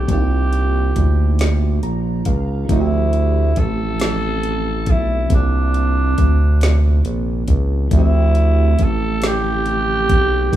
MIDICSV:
0, 0, Header, 1, 5, 480
1, 0, Start_track
1, 0, Key_signature, -1, "minor"
1, 0, Tempo, 869565
1, 50, Time_signature, 6, 3, 24, 8
1, 5830, End_track
2, 0, Start_track
2, 0, Title_t, "Tenor saxophone"
2, 0, Program_c, 0, 66
2, 0, Note_on_c, 0, 67, 90
2, 59, Note_off_c, 0, 67, 0
2, 65, Note_on_c, 0, 67, 99
2, 995, Note_off_c, 0, 67, 0
2, 1501, Note_on_c, 0, 64, 91
2, 1980, Note_on_c, 0, 69, 117
2, 1989, Note_off_c, 0, 64, 0
2, 2707, Note_on_c, 0, 64, 89
2, 2715, Note_off_c, 0, 69, 0
2, 2938, Note_off_c, 0, 64, 0
2, 2952, Note_on_c, 0, 62, 91
2, 3879, Note_off_c, 0, 62, 0
2, 4406, Note_on_c, 0, 64, 101
2, 4878, Note_on_c, 0, 69, 101
2, 4886, Note_off_c, 0, 64, 0
2, 5117, Note_on_c, 0, 67, 122
2, 5125, Note_off_c, 0, 69, 0
2, 5830, Note_off_c, 0, 67, 0
2, 5830, End_track
3, 0, Start_track
3, 0, Title_t, "FM electric piano"
3, 0, Program_c, 1, 5
3, 0, Control_c, 1, 64, 127
3, 23, Note_on_c, 1, 48, 66
3, 38, Note_on_c, 1, 58, 59
3, 52, Note_on_c, 1, 62, 61
3, 58, Control_c, 1, 64, 0
3, 62, Note_on_c, 1, 63, 61
3, 78, Note_on_c, 1, 65, 76
3, 144, Control_c, 1, 64, 127
3, 1010, Note_on_c, 1, 82, 72
3, 1233, Note_off_c, 1, 82, 0
3, 1247, Note_on_c, 1, 77, 69
3, 1454, Note_off_c, 1, 48, 0
3, 1457, Note_on_c, 1, 50, 61
3, 1462, Note_off_c, 1, 58, 0
3, 1469, Note_off_c, 1, 62, 0
3, 1469, Note_on_c, 1, 57, 57
3, 1471, Note_off_c, 1, 77, 0
3, 1474, Note_off_c, 1, 63, 0
3, 1480, Note_on_c, 1, 60, 59
3, 1482, Note_off_c, 1, 65, 0
3, 1489, Note_on_c, 1, 64, 60
3, 1497, Control_c, 1, 64, 0
3, 1500, Note_on_c, 1, 53, 59
3, 1512, Note_on_c, 1, 66, 58
3, 1537, Note_off_c, 1, 66, 0
3, 1547, Note_on_c, 1, 67, 70
3, 1601, Control_c, 1, 64, 127
3, 2891, Note_off_c, 1, 50, 0
3, 2897, Note_off_c, 1, 57, 0
3, 2903, Note_off_c, 1, 60, 0
3, 2904, Note_on_c, 1, 48, 68
3, 2907, Note_off_c, 1, 64, 0
3, 2913, Note_off_c, 1, 53, 0
3, 2918, Note_on_c, 1, 58, 58
3, 2933, Note_on_c, 1, 62, 60
3, 2937, Note_off_c, 1, 67, 0
3, 2938, Control_c, 1, 64, 0
3, 2945, Note_on_c, 1, 60, 59
3, 2958, Note_on_c, 1, 65, 72
3, 3031, Control_c, 1, 64, 127
3, 4335, Note_off_c, 1, 48, 0
3, 4342, Note_off_c, 1, 58, 0
3, 4346, Note_on_c, 1, 50, 66
3, 4349, Note_off_c, 1, 62, 0
3, 4356, Note_off_c, 1, 60, 0
3, 4357, Note_on_c, 1, 57, 61
3, 4362, Note_off_c, 1, 65, 0
3, 4367, Note_on_c, 1, 60, 59
3, 4377, Control_c, 1, 64, 0
3, 4378, Note_on_c, 1, 64, 65
3, 4390, Note_on_c, 1, 53, 63
3, 4399, Note_on_c, 1, 67, 76
3, 4460, Control_c, 1, 64, 127
3, 5776, Note_off_c, 1, 50, 0
3, 5781, Note_off_c, 1, 57, 0
3, 5787, Note_off_c, 1, 60, 0
3, 5790, Note_on_c, 1, 48, 65
3, 5792, Note_off_c, 1, 64, 0
3, 5798, Note_off_c, 1, 53, 0
3, 5801, Note_on_c, 1, 58, 61
3, 5802, Note_off_c, 1, 67, 0
3, 5817, Control_c, 1, 64, 0
3, 5830, Note_off_c, 1, 48, 0
3, 5830, Note_off_c, 1, 58, 0
3, 5830, End_track
4, 0, Start_track
4, 0, Title_t, "Analog synth bass"
4, 0, Program_c, 2, 38
4, 50, Note_on_c, 2, 36, 107
4, 508, Note_off_c, 2, 36, 0
4, 535, Note_on_c, 2, 38, 99
4, 991, Note_off_c, 2, 38, 0
4, 1008, Note_on_c, 2, 34, 82
4, 1227, Note_off_c, 2, 34, 0
4, 1251, Note_on_c, 2, 37, 95
4, 1468, Note_off_c, 2, 37, 0
4, 1489, Note_on_c, 2, 38, 112
4, 1947, Note_off_c, 2, 38, 0
4, 1973, Note_on_c, 2, 33, 93
4, 2690, Note_on_c, 2, 35, 82
4, 2699, Note_off_c, 2, 33, 0
4, 2908, Note_off_c, 2, 35, 0
4, 2931, Note_on_c, 2, 36, 99
4, 3389, Note_off_c, 2, 36, 0
4, 3415, Note_on_c, 2, 38, 89
4, 3870, Note_off_c, 2, 38, 0
4, 3892, Note_on_c, 2, 34, 88
4, 4109, Note_off_c, 2, 34, 0
4, 4132, Note_on_c, 2, 37, 95
4, 4349, Note_off_c, 2, 37, 0
4, 4372, Note_on_c, 2, 38, 112
4, 4829, Note_off_c, 2, 38, 0
4, 4856, Note_on_c, 2, 33, 93
4, 5577, Note_on_c, 2, 35, 87
4, 5586, Note_off_c, 2, 33, 0
4, 5792, Note_off_c, 2, 35, 0
4, 5830, End_track
5, 0, Start_track
5, 0, Title_t, "Drums"
5, 46, Note_on_c, 9, 36, 109
5, 48, Note_on_c, 9, 42, 75
5, 102, Note_off_c, 9, 36, 0
5, 103, Note_off_c, 9, 42, 0
5, 290, Note_on_c, 9, 42, 49
5, 346, Note_off_c, 9, 42, 0
5, 529, Note_on_c, 9, 42, 67
5, 532, Note_on_c, 9, 36, 82
5, 584, Note_off_c, 9, 42, 0
5, 588, Note_off_c, 9, 36, 0
5, 768, Note_on_c, 9, 42, 75
5, 778, Note_on_c, 9, 38, 104
5, 823, Note_off_c, 9, 42, 0
5, 833, Note_off_c, 9, 38, 0
5, 1010, Note_on_c, 9, 42, 50
5, 1065, Note_off_c, 9, 42, 0
5, 1243, Note_on_c, 9, 42, 73
5, 1248, Note_on_c, 9, 36, 91
5, 1299, Note_off_c, 9, 42, 0
5, 1303, Note_off_c, 9, 36, 0
5, 1486, Note_on_c, 9, 36, 112
5, 1486, Note_on_c, 9, 42, 74
5, 1541, Note_off_c, 9, 36, 0
5, 1541, Note_off_c, 9, 42, 0
5, 1728, Note_on_c, 9, 42, 48
5, 1783, Note_off_c, 9, 42, 0
5, 1966, Note_on_c, 9, 42, 64
5, 1971, Note_on_c, 9, 36, 90
5, 2021, Note_off_c, 9, 42, 0
5, 2027, Note_off_c, 9, 36, 0
5, 2206, Note_on_c, 9, 42, 79
5, 2216, Note_on_c, 9, 38, 112
5, 2261, Note_off_c, 9, 42, 0
5, 2271, Note_off_c, 9, 38, 0
5, 2448, Note_on_c, 9, 42, 51
5, 2503, Note_off_c, 9, 42, 0
5, 2685, Note_on_c, 9, 42, 70
5, 2688, Note_on_c, 9, 36, 91
5, 2740, Note_off_c, 9, 42, 0
5, 2743, Note_off_c, 9, 36, 0
5, 2925, Note_on_c, 9, 42, 73
5, 2927, Note_on_c, 9, 36, 108
5, 2980, Note_off_c, 9, 42, 0
5, 2982, Note_off_c, 9, 36, 0
5, 3170, Note_on_c, 9, 42, 49
5, 3225, Note_off_c, 9, 42, 0
5, 3410, Note_on_c, 9, 42, 69
5, 3413, Note_on_c, 9, 36, 91
5, 3465, Note_off_c, 9, 42, 0
5, 3468, Note_off_c, 9, 36, 0
5, 3650, Note_on_c, 9, 42, 72
5, 3660, Note_on_c, 9, 38, 113
5, 3705, Note_off_c, 9, 42, 0
5, 3716, Note_off_c, 9, 38, 0
5, 3890, Note_on_c, 9, 42, 53
5, 3946, Note_off_c, 9, 42, 0
5, 4127, Note_on_c, 9, 42, 69
5, 4130, Note_on_c, 9, 36, 87
5, 4182, Note_off_c, 9, 42, 0
5, 4185, Note_off_c, 9, 36, 0
5, 4367, Note_on_c, 9, 42, 75
5, 4368, Note_on_c, 9, 36, 109
5, 4423, Note_off_c, 9, 36, 0
5, 4423, Note_off_c, 9, 42, 0
5, 4608, Note_on_c, 9, 42, 50
5, 4664, Note_off_c, 9, 42, 0
5, 4850, Note_on_c, 9, 42, 65
5, 4854, Note_on_c, 9, 36, 89
5, 4905, Note_off_c, 9, 42, 0
5, 4909, Note_off_c, 9, 36, 0
5, 5088, Note_on_c, 9, 42, 76
5, 5098, Note_on_c, 9, 38, 120
5, 5143, Note_off_c, 9, 42, 0
5, 5153, Note_off_c, 9, 38, 0
5, 5330, Note_on_c, 9, 42, 52
5, 5386, Note_off_c, 9, 42, 0
5, 5572, Note_on_c, 9, 42, 72
5, 5573, Note_on_c, 9, 36, 89
5, 5627, Note_off_c, 9, 42, 0
5, 5628, Note_off_c, 9, 36, 0
5, 5811, Note_on_c, 9, 36, 109
5, 5830, Note_off_c, 9, 36, 0
5, 5830, End_track
0, 0, End_of_file